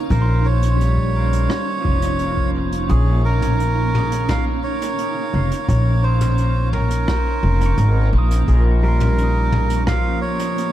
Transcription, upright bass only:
0.10 1.47 A#1 medium
1.85 2.86 F1 medium
2.89 4.26 A#1 loud
5.34 5.49 F1 medium
5.68 7.05 A#1 medium
7.43 7.74 F1 medium
7.78 8.09 G#1 medium
8.13 8.44 A#1 medium
8.48 9.84 A#1 medium

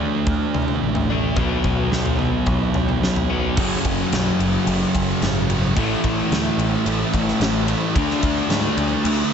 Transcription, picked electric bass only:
0.00 0.23 D2 medium
0.27 0.78 D2 loud
0.82 1.33 A1 medium
1.37 1.63 B1 medium
1.65 1.90 B1 medium
1.91 2.43 B1 medium
2.47 2.73 B1 loud
2.74 3.00 B1 medium
3.02 3.54 B1 medium
3.57 3.74 F#1 medium
3.85 4.01 F#1 medium
4.12 4.29 B1 medium
4.39 4.56 F#1 medium
4.67 4.83 F#1 loud
4.95 5.11 F#1 medium
5.21 5.77 G#1 medium
5.77 5.93 A1 medium
6.04 6.21 A1 medium
6.31 6.48 D2 loud
6.57 6.74 A1 medium
6.86 7.03 A1 loud
7.14 7.30 A1 medium
7.40 7.73 A1 loud
7.95 8.12 D2 medium
8.23 8.39 D2 medium
8.49 8.66 G#2 medium
8.77 8.94 D2 loud
9.04 9.21 D2 loud

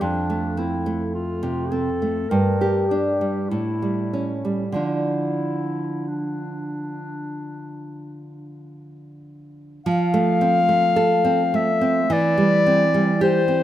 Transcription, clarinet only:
0.03 0.60 D4 medium
0.58 1.14 E4 medium
1.15 1.73 F4 medium
1.71 2.31 A4 medium
2.30 2.87 A#4 medium
2.88 3.51 G4 medium
3.49 4.45 E4 medium
4.77 6.09 E4 medium
6.08 8.60 D4 medium
9.85 11.57 F5 loud
11.56 12.14 E5 loud
12.12 13.22 D5 loud
13.23 13.63 C5 loud

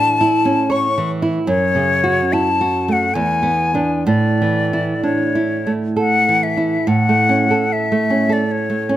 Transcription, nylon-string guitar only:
0.00 1.45 A2 medium
0.00 0.20 D4 medium
0.00 0.10 E4 medium
0.21 0.61 E4 medium
0.45 0.86 C#4 medium
0.70 1.11 C#5 medium
0.98 1.38 E3 medium
1.22 1.48 E4 medium
1.47 3.10 F#2 medium
1.75 2.20 C#3 medium
2.04 2.48 F#4 medium
2.33 2.60 E4 medium
2.61 3.04 F#4 medium
2.88 3.16 A3 medium
3.15 4.05 E2 medium
3.43 3.73 B3 medium
3.74 4.04 B3 medium
3.74 4.04 D4 medium
4.07 6.84 A2 medium
4.42 4.93 E3 soft
4.73 5.24 E4 medium
5.03 5.36 D4 medium
5.35 5.86 E4 soft
5.67 6.16 A3 medium
5.96 6.46 A4 soft
6.29 6.77 E3 medium
6.57 6.87 E4 soft
6.87 8.97 A2 medium
7.09 7.43 A3 medium
7.29 7.64 C#4 medium
7.51 8.15 A4 medium
7.92 8.23 A3 medium
8.10 8.42 C#4 medium
8.29 8.93 A4 soft
8.70 8.97 A3 soft
8.89 8.97 C#4 medium

